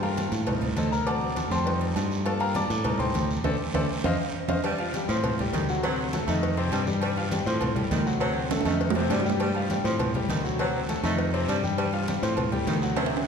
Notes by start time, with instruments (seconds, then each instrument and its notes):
Already playing: fingered electric bass G2, grand piano A3 A#3 F4
0.03 grand piano A#4 F5 G5 A#5, high conga, low agogo
0.17 cowbell, high conga, low agogo, short guiro
0.32 fingered electric bass A2, cowbell, high conga, short guiro
0.47 grand piano G3 C4 D#4, cowbell, high conga, low conga, low agogo, long guiro
0.62 high conga, low conga, low agogo
0.77 fingered electric bass D2, grand piano A4 C5 D#5 A5, cowbell, high conga, low agogo, short guiro
0.92 grand piano A#4 A#5, high conga, short guiro
1.06 grand piano F#3 A3 C4 D5 F#5 A5 D6, cowbell, high conga, low agogo, long guiro
1.22 high conga
1.36 cowbell, high conga, low agogo, short guiro
1.50 fingered electric bass F2, grand piano C5 G5 A5 C6, low agogo, short guiro
1.65 grand piano G3 A3 D#4, cowbell, high conga, long guiro
1.81 high conga, low agogo
1.96 fingered electric bass G2, cowbell, high conga, low timbale, low agogo, short guiro
2.12 short guiro
2.25 grand piano A3 A#3 F4 A4 D5 F5 A5, cowbell, high conga, low agogo, long guiro
2.40 grand piano A#4 F5 G5 A#5, high conga, low agogo
2.54 grand piano D5 A5 A#5 D6, cowbell, high conga, low agogo, short guiro
2.70 fingered electric bass A2, cowbell, high conga, short guiro
2.84 grand piano G3 C4 D#4, cowbell, high conga, low conga, low agogo, long guiro
2.99 grand piano C5 G5 A5 C6, high conga, low conga, low agogo
3.14 fingered electric bass D2, cowbell, high conga, low agogo, short guiro
3.30 high conga, short guiro
3.44 fingered electric bass D2, grand piano A4 C5 D5, cowbell, high conga, high timbale, long guiro
3.74 fingered electric bass D2, grand piano A4 C5 D5, cowbell, high conga, high timbale, long guiro
4.04 fingered electric bass F2, grand piano C5 D#5 F5, cowbell, high conga, high timbale, long guiro
4.48 fingered electric bass F2, grand piano C5 D#5 F5, cowbell, high conga, high timbale, long guiro
4.64 saxophone section G3, cowbell, high conga, low agogo, long guiro
4.78 grand piano F3 F4 F5, high conga, low agogo
4.94 grand piano G3 G4 G5, cowbell, high conga, low agogo, short guiro
5.08 fingered electric bass A2, saxophone section F3, grand piano C4 C5 C6, cowbell, high conga, short guiro
5.24 cowbell, high conga, low conga, low agogo, long guiro
5.39 grand piano G3 G4 G5, high conga, low conga, low agogo
5.53 fingered electric bass D2, saxophone section D#3, cowbell, high conga, low agogo, short guiro
5.69 grand piano F#3 F#4 F#5, high conga, short guiro
5.83 grand piano C3 C4 C5, saxophone section F#3, cowbell, high conga, low agogo, long guiro
5.98 high conga
6.13 grand piano A3 A4 A5, cowbell, high conga, low agogo, short guiro
6.27 fingered electric bass F2, grand piano D#3 D#4 D#5, saxophone section A3, low agogo, short guiro
6.42 cowbell, high conga, long guiro
6.57 grand piano C3 C4 C5, high conga, low agogo
6.71 fingered electric bass G2, saxophone section G3, cowbell, low agogo, short guiro
6.87 grand piano G3 G4 G5, high conga, short guiro
7.02 saxophone section G3, cowbell, high conga, low agogo, long guiro
7.17 grand piano F3 F4 F5, high conga, low agogo
7.31 grand piano G3 G4 G5, cowbell, high conga, low agogo, short guiro
7.46 fingered electric bass A2, saxophone section F3, grand piano C4 C5 C6, cowbell, high conga, short guiro
7.61 cowbell, high conga, low conga, low agogo, long guiro
7.75 grand piano G3 G4 G5, high conga, low conga, low agogo
7.91 fingered electric bass D2, saxophone section D#3, cowbell, high conga, low timbale, low agogo, short guiro
8.06 grand piano F#3 F#4 F#5, high conga, short guiro
8.20 grand piano C3 C4 C5, saxophone section F#3, cowbell, high conga, low agogo, long guiro
8.36 high conga
8.51 grand piano A3 A4 A5, cowbell, high conga, high timbale, low agogo, short guiro
8.61 high timbale
8.65 fingered electric bass F2, grand piano D#3 D#4 D#5, saxophone section A3, low agogo, short guiro
8.70 high timbale
8.81 cowbell, high conga, long guiro
8.90 low timbale
8.95 grand piano C3 C4 C5, high conga, low agogo
9.00 low timbale
9.10 fingered electric bass G2, saxophone section G3, cowbell, high conga, low timbale, low agogo, short guiro
9.20 low timbale
9.25 grand piano G3 G4 G5, short guiro
9.30 low timbale
9.40 saxophone section G3, cowbell, high conga, low agogo, long guiro
9.55 grand piano F3 F4 F5, high conga, low agogo
9.70 grand piano G3 G4 G5, cowbell, high conga, low agogo, short guiro
9.84 fingered electric bass A2, saxophone section F3, grand piano C4 C5 C6, cowbell, high conga, short guiro
9.99 cowbell, high conga, low conga, low agogo, long guiro
10.14 grand piano G3 G4 G5, high conga, low conga, low agogo
10.29 fingered electric bass D2, saxophone section D#3, cowbell, high conga, low agogo, short guiro
10.44 grand piano F#3 F#4 F#5, high conga, short guiro
10.59 grand piano C3 C4 C5, saxophone section F#3, cowbell, high conga, low agogo, long guiro
10.74 high conga
10.89 grand piano A3 A4 A5, cowbell, high conga, low agogo, short guiro
11.03 fingered electric bass F2, grand piano D#3 D#4 D#5, saxophone section A3, low agogo, short guiro
11.18 cowbell, high conga, long guiro
11.33 grand piano C3 C4 C5, high conga, low agogo
11.47 fingered electric bass G2, saxophone section G3, cowbell, high conga, low agogo, short guiro
11.63 grand piano G3 G4 G5, high conga, short guiro
11.77 saxophone section G3, cowbell, high conga, low agogo, long guiro
11.93 grand piano F3 F4 F5, high conga, low agogo
12.08 grand piano G3 G4 G5, cowbell, high conga, low agogo, short guiro
12.22 fingered electric bass A2, saxophone section F3, grand piano C4 C5 C6, cowbell, high conga, short guiro
12.37 cowbell, high conga, low conga, low agogo, long guiro
12.52 grand piano G3 G4 G5, high conga, low conga, low agogo
12.67 fingered electric bass D2, saxophone section D#3, cowbell, high conga, low timbale, low agogo, short guiro
12.82 grand piano F#3 F#4 F#5, high conga, short guiro
12.96 grand piano C3 C4 C5, saxophone section F#3, cowbell, high conga, high timbale, low agogo, long guiro
13.06 high timbale
13.13 high conga, high timbale